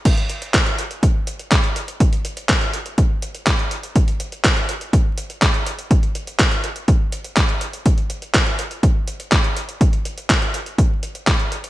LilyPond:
\new DrumStaff \with { instrumentName = "Drums" } \drummode { \time 4/4 \tempo 4 = 123 <cymc hh bd>16 hh16 hh16 hh16 <hc hh bd>16 hh16 hh16 hh16 <hh bd>8 hh16 hh16 <hc hh bd>16 hh16 hh16 hh16 | <hh bd>16 hh16 hh16 hh16 <hc hh bd>16 hh16 hh16 hh16 <hh bd>8 hh16 hh16 <hc hh bd>16 hh16 hh16 hh16 | <hh bd>16 hh16 hh16 hh16 <hc hh bd>16 hh16 hh16 hh16 <hh bd>8 hh16 hh16 <hc hh bd>16 hh16 hh16 hh16 | <hh bd>16 hh16 hh16 hh16 <hc hh bd>16 hh16 hh16 hh16 <hh bd>8 hh16 hh16 <hc hh bd>16 hh16 hh16 hh16 |
<hh bd>16 hh16 hh16 hh16 <hc hh bd>16 hh16 hh16 hh16 <hh bd>8 hh16 hh16 <hc hh bd>16 hh16 hh16 hh16 | <hh bd>16 hh16 hh16 hh16 <hc hh bd>16 hh16 hh16 hh16 <hh bd>8 hh16 hh16 <hc hh bd>16 hh16 hh16 hh16 | }